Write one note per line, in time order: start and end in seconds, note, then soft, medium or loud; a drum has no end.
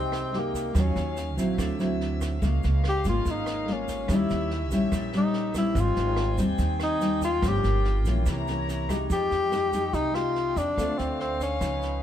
0.00 0.71 C2 medium
0.00 0.73 C3 medium
0.00 0.30 G#3 medium
0.00 0.40 C4 medium
0.00 0.31 D#4 medium
0.00 0.75 D#4 medium
0.00 0.31 G4 medium
0.00 0.75 G5 medium
0.12 cross-stick medium
0.12 snare soft
0.12 shaker soft
0.33 0.72 G#3 medium
0.33 0.73 D#4 medium
0.33 0.73 G4 medium
0.33 snare soft
0.39 0.82 A#3 medium
0.54 kick soft
0.54 snare soft
0.54 shaker medium
0.75 0.95 D#2 medium
0.75 1.57 D#3 medium
0.75 1.17 F#3 medium
0.75 2.41 F#3 medium
0.75 1.17 C#4 medium
0.75 1.59 C#4 medium
0.75 1.17 F4 medium
0.75 1.58 F5 medium
0.75 kick medium
0.75 cross-stick medium
0.75 snare soft
0.75 shaker medium
0.80 1.40 C#4 medium
0.96 1.38 D#2 medium
0.96 snare soft
0.96 shaker soft
1.16 snare soft
1.16 shaker medium
1.37 1.57 A#1 medium
1.37 1.76 F#3 medium
1.37 1.76 C4 medium
1.37 1.76 E4 medium
1.37 kick soft
1.37 snare soft
1.37 shaker medium
1.58 2.38 D2 medium
1.58 2.40 D3 medium
1.58 2.42 C4 medium
1.58 2.42 E5 medium
1.58 kick medium
1.58 cross-stick medium
1.58 snare soft
1.58 shaker medium
1.79 2.39 F#3 medium
1.79 2.39 C4 medium
1.79 2.39 E4 medium
1.79 snare soft
1.79 shaker soft
2.00 snare soft
2.21 kick soft
2.21 cross-stick medium
2.21 snare soft
2.21 shaker medium
2.42 2.62 C#2 medium
2.42 3.24 C#3 medium
2.42 2.84 G#3 medium
2.42 2.84 A#3 medium
2.42 4.08 C#4 medium
2.42 2.84 F4 medium
2.42 4.08 A#4 medium
2.42 4.08 F5 medium
2.42 kick medium
2.42 snare soft
2.42 shaker medium
2.63 3.06 C#2 loud
2.63 snare soft
2.63 shaker soft
2.84 cross-stick medium
2.84 snare soft
2.89 3.06 G4 loud
3.04 3.24 G#1 medium
3.04 3.64 G#3 medium
3.04 3.65 A#3 medium
3.04 3.65 F4 medium
3.04 kick soft
3.04 snare soft
3.04 shaker medium
3.09 3.32 F4 medium
3.25 4.05 G#1 medium
3.25 4.07 G#2 medium
3.25 kick medium
3.25 snare soft
3.25 shaker medium
3.31 3.74 D#4 medium
3.46 cross-stick medium
3.46 snare soft
3.46 shaker soft
3.67 4.06 G#3 medium
3.67 4.06 A#3 medium
3.67 4.07 F4 medium
3.67 snare soft
3.73 4.17 C#4 medium
3.88 kick soft
3.88 snare soft
3.88 shaker medium
4.08 4.29 D#2 loud
4.08 4.91 D#3 medium
4.08 4.51 G3 medium
4.08 5.75 C#4 medium
4.08 4.51 C#4 medium
4.08 4.51 E4 medium
4.08 5.74 G4 medium
4.08 5.75 E5 medium
4.08 kick medium
4.08 cross-stick medium
4.08 snare soft
4.08 shaker medium
4.15 4.75 E4 medium
4.30 4.71 D#2 loud
4.30 snare soft
4.30 shaker soft
4.50 snare soft
4.71 4.91 A#1 medium
4.71 5.10 G3 medium
4.71 5.11 C#4 medium
4.71 5.11 E4 medium
4.71 kick soft
4.71 snare soft
4.71 shaker medium
4.92 5.72 A#1 medium
4.92 5.74 A#2 medium
4.92 kick medium
4.92 cross-stick medium
4.92 snare soft
4.92 shaker medium
5.13 5.52 G3 medium
5.13 5.52 C#4 medium
5.13 snare soft
5.13 shaker soft
5.17 5.54 D#4 medium
5.33 snare soft
5.54 6.35 G3 medium
5.54 6.35 C4 medium
5.54 6.36 D#4 medium
5.54 5.81 E4 medium
5.54 kick soft
5.54 cross-stick medium
5.54 snare soft
5.54 shaker medium
5.75 5.95 G#1 loud
5.75 6.58 G#2 medium
5.75 7.42 C4 medium
5.75 8.24 G5 medium
5.75 7.42 G#5 medium
5.75 kick medium
5.75 snare soft
5.75 shaker medium
5.80 6.41 F4 loud
5.96 6.39 G#1 loud
5.96 snare soft
5.96 shaker soft
6.16 cross-stick medium
6.16 snare soft
6.38 6.58 D#2 medium
6.38 6.98 G3 medium
6.38 6.98 C4 medium
6.38 6.98 D#4 medium
6.38 kick soft
6.38 snare soft
6.38 shaker medium
6.58 7.39 D#2 medium
6.58 7.40 D#3 medium
6.58 kick medium
6.58 snare soft
6.58 shaker medium
6.80 7.21 D#4 loud
6.80 cross-stick medium
6.80 snare soft
6.80 shaker soft
7.01 7.28 G3 medium
7.01 7.28 C4 medium
7.01 7.28 D#4 medium
7.01 snare soft
7.01 shaker medium
7.22 7.49 F4 medium
7.22 kick soft
7.22 snare soft
7.22 shaker medium
7.42 7.62 G1 loud
7.42 8.25 G2 medium
7.42 7.85 F3 medium
7.42 7.85 A#3 medium
7.42 7.85 C#4 medium
7.42 8.26 F4 medium
7.42 8.26 A#4 medium
7.42 kick medium
7.42 cross-stick medium
7.42 snare soft
7.42 shaker medium
7.48 8.08 G4 loud
7.63 8.05 G1 medium
7.63 snare soft
7.63 shaker soft
7.84 snare soft
8.05 8.25 A#1 medium
8.05 8.44 E3 medium
8.05 8.44 A#3 medium
8.05 8.45 C#4 medium
8.05 kick soft
8.05 snare soft
8.05 shaker medium
8.26 9.06 C2 medium
8.26 9.09 C3 medium
8.26 9.10 E4 medium
8.26 9.10 C#5 medium
8.26 9.10 A#5 medium
8.26 kick medium
8.26 cross-stick medium
8.26 snare soft
8.26 shaker medium
8.47 8.87 E3 medium
8.47 8.87 A#3 medium
8.47 8.87 C#4 medium
8.47 snare soft
8.47 shaker soft
8.68 snare soft
8.68 shaker medium
8.89 9.51 G#3 medium
8.89 9.51 D#4 medium
8.89 9.51 G4 medium
8.89 kick soft
8.89 cross-stick medium
8.89 snare soft
8.89 shaker medium
9.10 9.29 F2 medium
9.10 9.92 F3 medium
9.10 10.76 D#4 medium
9.10 9.95 G4 loud
9.10 10.77 G5 medium
9.10 kick medium
9.10 snare soft
9.10 shaker medium
9.31 9.90 F2 medium
9.31 snare soft
9.31 shaker soft
9.52 9.69 G#3 soft
9.52 9.70 D#4 medium
9.52 9.70 G4 medium
9.52 cross-stick medium
9.52 snare soft
9.52 shaker soft
9.72 10.12 G#3 medium
9.72 10.12 D#4 medium
9.72 10.12 G4 medium
9.72 kick soft
9.72 snare soft
9.72 shaker medium
9.93 10.52 C2 medium
9.93 10.76 C3 medium
9.93 10.16 D#4 medium
9.93 kick medium
9.93 snare soft
9.93 shaker medium
10.14 10.74 G#3 medium
10.14 10.74 D#4 medium
10.14 10.59 F4 loud
10.14 10.74 G4 medium
10.14 cross-stick medium
10.14 snare soft
10.14 shaker soft
10.35 snare soft
10.56 10.76 F2 medium
10.56 11.00 D4 loud
10.56 kick soft
10.56 snare soft
10.56 shaker medium
10.77 10.97 D2 medium
10.77 11.59 D3 medium
10.77 11.34 A3 medium
10.77 11.34 C4 medium
10.77 11.62 D4 medium
10.77 11.34 F4 medium
10.77 11.62 C5 medium
10.77 12.03 F5 medium
10.77 kick soft
10.77 cross-stick medium
10.77 snare soft
10.77 shaker medium
10.98 11.58 D2 medium
10.98 11.19 C4 medium
10.98 snare soft
10.98 shaker soft
11.20 11.40 C4 medium
11.20 snare soft
11.40 12.03 C#4 medium
11.40 kick soft
11.40 snare soft
11.40 shaker medium
11.61 12.03 C#2 medium
11.61 12.03 C#3 medium
11.61 12.03 F3 medium
11.61 12.03 B3 soft
11.61 12.03 D#4 medium
11.61 12.03 B4 medium
11.61 kick medium
11.61 cross-stick medium
11.61 snare soft
11.61 shaker medium
11.82 snare soft
11.82 shaker soft